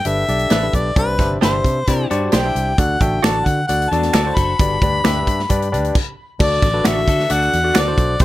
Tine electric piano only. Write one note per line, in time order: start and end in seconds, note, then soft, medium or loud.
0.06 0.24 D4 medium
0.06 0.24 G4 medium
0.06 0.24 A4 medium
0.06 0.24 B4 medium
0.28 0.56 D4 medium
0.28 0.56 G4 medium
0.28 0.56 A4 medium
0.28 0.56 D5 medium
0.63 0.90 D4 medium
0.63 0.90 G4 medium
0.63 0.90 A4 medium
0.63 0.90 B4 medium
0.96 1.60 C3 medium
0.96 1.14 D4 medium
0.96 1.15 G4 medium
0.96 1.15 C5 medium
0.96 1.15 D5 medium
1.19 1.37 D4 medium
1.19 1.37 G4 medium
1.19 1.37 C5 medium
1.19 1.38 E5 medium
1.42 1.78 D4 medium
1.42 1.79 G4 medium
1.42 1.78 C5 medium
1.42 1.79 E5 medium
1.88 2.06 D4 medium
1.88 2.06 G4 medium
1.88 2.06 C5 medium
1.88 2.06 D5 medium
2.10 2.37 D4 medium
2.10 2.37 G4 medium
2.10 2.38 C5 medium
2.10 2.37 D5 loud
2.44 2.71 D4 medium
2.44 2.72 G4 medium
2.44 2.72 C5 medium
2.44 2.72 E5 medium
2.78 3.42 D3 medium
2.78 2.96 D4 medium
2.78 2.96 F#4 medium
2.78 2.96 A4 medium
2.78 2.96 D5 medium
3.01 3.19 D4 medium
3.01 3.19 F#4 medium
3.01 3.19 A4 medium
3.01 3.19 E5 medium
3.23 3.59 D4 medium
3.23 3.59 F#4 medium
3.23 3.60 A4 medium
3.23 3.60 D5 medium
3.69 3.87 D4 medium
3.69 3.87 F#4 medium
3.69 3.87 A4 medium
3.69 3.87 D5 medium
3.92 4.19 D4 medium
3.92 4.19 F#4 medium
3.92 4.19 A4 medium
3.92 4.19 D5 medium
4.25 4.52 D4 medium
4.25 4.53 F#4 medium
4.25 4.53 A4 medium
4.25 4.53 C5 medium
4.60 5.24 G2 medium
4.60 4.78 D4 medium
4.60 4.78 G4 medium
4.60 4.78 B4 medium
4.60 4.78 D5 medium
4.83 5.00 D4 medium
4.83 5.00 G4 medium
4.83 5.00 B4 medium
4.83 5.00 D5 medium
5.04 5.40 D4 medium
5.04 5.41 G4 medium
5.04 5.41 B4 medium
5.04 5.41 E5 loud
5.49 5.68 D4 medium
5.49 5.68 G4 medium
5.49 5.68 B4 medium
5.49 5.68 D5 loud
5.72 5.95 D4 medium
5.72 5.95 G4 medium
5.72 5.95 B4 medium
5.72 5.95 D5 loud
6.39 7.04 D3 medium
6.39 6.67 D4 medium
6.39 6.67 F#4 medium
6.39 6.67 A4 medium
6.39 6.67 D5 medium
6.73 6.92 D4 medium
6.73 6.92 F#4 medium
6.73 6.92 A4 medium
6.73 6.92 B4 medium
6.95 7.23 D4 medium
6.95 7.23 F#4 medium
6.95 7.23 A4 medium
6.95 7.23 E5 medium
7.29 7.57 D4 medium
7.29 7.57 F#4 medium
7.29 7.57 A4 medium
7.29 7.57 D5 medium
7.64 7.82 D4 medium
7.64 7.82 F#4 medium
7.64 7.82 A4 medium
7.64 7.82 D5 medium
7.87 8.14 D4 medium
7.87 8.14 F#4 medium
7.87 8.14 A4 medium
7.87 8.14 C5 medium
8.21 8.25 C3 medium
8.21 8.25 C4 medium
8.21 8.25 E4 medium
8.21 8.25 G4 medium
8.21 8.25 C5 medium